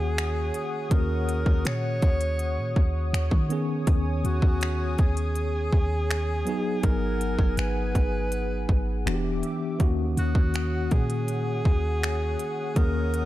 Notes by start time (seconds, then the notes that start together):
Already playing: D#2 D#3 A#3 C#4 F#4 G#4 C#5 F#5 D#6
0.18 finger snap, closed hi-hat
0.54 closed hi-hat
0.89 D#2 D#3 A#3 C#4 F#4 A#4, kick, closed hi-hat
1.00 G#4
1.29 closed hi-hat
1.46 D#2, kick
1.65 A#2 C#5, finger snap, closed hi-hat
2.02 D#2, kick, closed hi-hat
2.21 closed hi-hat
2.39 closed hi-hat
2.58 A#2
2.76 D#2, kick
3.13 D#2, finger snap, closed hi-hat
3.31 D#3, kick
3.49 D#3 B3 C#4 G#4 G#5 D#6, closed hi-hat
3.87 D#2, kick, closed hi-hat
4.24 D#2 F#4, closed hi-hat
4.42 D#2, kick
4.61 finger snap, closed hi-hat
4.98 D#2 G#4, kick, closed hi-hat
5.17 closed hi-hat
5.36 closed hi-hat
5.72 D#2, kick
6.11 finger snap, closed hi-hat
6.45 F#3 B3 D#4 G#4 F#5 G#5, closed hi-hat
6.83 G#1 A#4, kick, closed hi-hat
7.21 closed hi-hat
7.39 F#1, kick
7.57 G#1 B4, finger snap, closed hi-hat
7.95 G#1, kick, closed hi-hat
8.32 closed hi-hat
8.69 G#1, kick
9.06 E1 E3 B3 D4 F#4 G4 E5 D6, finger snap, closed hi-hat
9.14 G4
9.43 closed hi-hat
9.79 D#2 D#3 A#3 C#4 F#4 C#5 F#5 D#6, kick, closed hi-hat
10.17 D#2 F#4, closed hi-hat
10.35 D#2, kick
10.54 finger snap, closed hi-hat
10.91 A#2 G#4, kick, closed hi-hat
11.10 closed hi-hat
11.28 closed hi-hat
11.65 D#2, kick
12.03 finger snap, closed hi-hat
12.39 closed hi-hat
12.75 D#2 D#3 A#3 C#4 G#4 A#4, kick, closed hi-hat
13.14 closed hi-hat